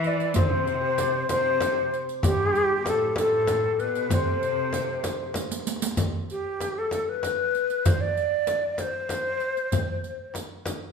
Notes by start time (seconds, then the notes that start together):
Already playing: E3 C5 E5
0.04 D5, riq, tombak ka
0.20 riq
0.34 C3 C5, riq, frame drum, tombak dum
0.45 C5
0.51 C5
0.59 C5
0.67 C5, riq
0.74 C5
0.81 C5
0.98 D5, riq, tombak tek, frame drum
1.29 C3 C5, riq, tombak tek, frame drum
1.61 riq, tombak tek, frame drum
1.93 riq, tombak ka
2.09 riq
2.23 G2 G4, riq, frame drum, tombak dum
2.31 G4
2.40 G4
2.47 G4
2.53 G4, riq
2.63 G4
2.70 G4
2.78 B2 G4
2.85 A2 G4 A4, riq, tombak tek, frame drum
2.94 G4
3.01 G4
3.16 A2 A4, riq, tombak tek, frame drum
3.47 riq, tombak tek, frame drum
3.79 B2 B4, riq, tombak ka
3.95 riq
4.10 C3 C5, riq, tombak dum, frame drum
4.14 C5
4.42 riq, tombak ka
4.73 riq, tombak tek, frame drum
5.04 riq, tombak tek, frame drum
5.34 riq, tombak tek, frame drum
5.44 tombak ka
5.51 riq, tombak tek
5.59 tombak ka
5.67 riq, tombak tek
5.76 tombak ka
5.82 riq, tombak tek
5.91 tombak ka
5.97 riq, frame drum, tombak dum
6.30 G4, riq
6.61 riq, tombak tek, frame drum
6.78 A4
6.91 riq, tombak tek, frame drum
7.08 B4
7.23 riq, tombak tek, frame drum
7.55 riq
7.70 riq
7.85 C5, riq, tombak dum, frame drum
8.01 D5
8.17 riq
8.47 riq, tombak tek, frame drum
8.78 C5, riq, tombak tek, frame drum
9.09 riq, tombak tek, frame drum
9.40 riq
9.57 riq
9.72 riq, tombak dum, frame drum
10.04 riq
10.34 riq, tombak tek, frame drum
10.65 riq, tombak tek, frame drum